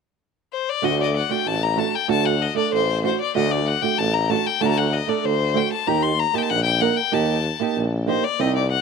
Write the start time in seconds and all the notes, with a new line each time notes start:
0.53 C5
0.69 D5
0.82 D2 A3 D4 F#4 D#5
1.00 D5 D#5
1.08 D5
1.16 F#5
1.29 A3 D4 F#4 G5
1.46 A1 A5
1.63 A#5
1.76 A3 D4 F#4 A5
1.95 G5
2.08 D2 A3 D4 F#4 A5
2.26 F#5
2.42 D#5
2.55 A3 D4 A4 D5
2.72 A1 C5
3.03 A3 D4 F#4 C5
3.21 D5
3.35 D2 A3 D4 F#4 D#5
3.51 D5
3.67 F#5
3.82 A3 D4 F#4 G5
3.98 A1 A5
4.14 A#5
4.29 A3 D4 F#4 A5
4.47 G5
4.61 D2 A3 D4 F#4 A5
4.65 A#5
4.70 A5
4.78 F#5
4.93 D#5
5.07 A3 D4 A4 D5
5.24 D2 C5
5.54 A3 D4 F#4 G5
5.72 A5
5.87 D#2 A#3 D#4 G4 A#5
6.03 C6
6.20 A#5
6.33 A#3 D#4 G4 A5
6.38 G5
6.42 A5
6.50 A#1 F#5
6.64 G5
6.81 A#3 D#4 A#4 F#5
6.97 G5
7.12 D#2 A#3 D#4 G4 A5
7.60 A#3 D#4 G4
7.76 A#1
8.07 A#3 D#4 G4 C5
8.24 D5
8.39 C2 C4 D#4 G4 D#5
8.56 D5
8.71 F#5